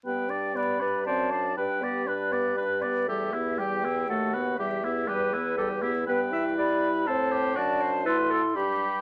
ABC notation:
X:1
M:3/4
L:1/8
Q:1/4=120
K:G
V:1 name="Flute"
g2 b2 a2 | g2 d3 z | e2 g2 f2 | e2 B3 z |
g2 b2 a2 | a2 c'2 b2 |]
V:2 name="Clarinet"
z2 d B d c | B G B4 | A G3 F2 | G2 B2 A G |
B e d z c2 | d c B A G2 |]
V:3 name="Oboe"
B d B d c d | B d B d B d | G E G E A B | G E G E G E |
B4 A G | F2 A A G2 |]
V:4 name="French horn"
B, D B, D C D | D B, D B, D B, | G, B, G, B, A, B, | G, B, G, B, G, B, |
B, E3 C2 | D2 E2 D2 |]
V:5 name="Bassoon" clef=bass
G,,4 F,,2 | G,,6 | E,,4 ^D,,2 | E,,6 |
G,,2 G,2 A,,2 | F,,2 D,,2 G,,2 |]